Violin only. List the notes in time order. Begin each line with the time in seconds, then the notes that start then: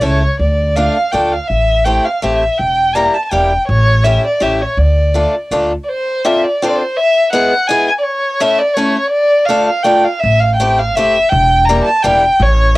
0.03 C#5
0.40 D5
0.75 F5
1.11 G5
1.32 F5
1.47 E5
1.84 G5
2.05 F5
2.23 E5
2.57 G5
2.96 A#5
3.14 A5
3.24 A5
3.30 G5
3.68 C#5
4.04 E5
4.26 D5
4.42 E5
4.61 C#5
4.78 D5
5.83 D5
5.89 C5
6.25 E5
6.43 D5
6.62 C5
6.68 D5
6.75 C5
6.96 E5
7.32 F#5
7.67 G#5
7.87 G#5
7.99 D5
8.03 C#5
8.41 E5
8.58 D5
8.74 C#5
9.10 D5
9.45 F5
9.67 F5
9.83 G5
10.04 F5
10.20 E5
10.40 F5
10.55 G5
10.78 F5
10.95 E5
11.29 G5
11.65 A#5
11.84 A5
12.02 G5
12.42 C#5